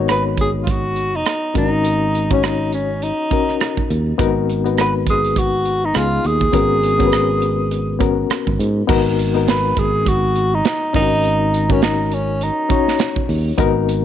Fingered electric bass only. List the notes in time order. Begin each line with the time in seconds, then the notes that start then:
Already playing: G#1
1.55 G#1
3.90 D#2
4.19 G#1
5.96 C#2
6.25 D#2
6.54 G#1
8.30 muted fingered electric bass stroke
8.47 G#1
8.59 G#2
8.89 G#1
9.77 G#1
10.94 G#1
13.29 D#2
13.58 G#1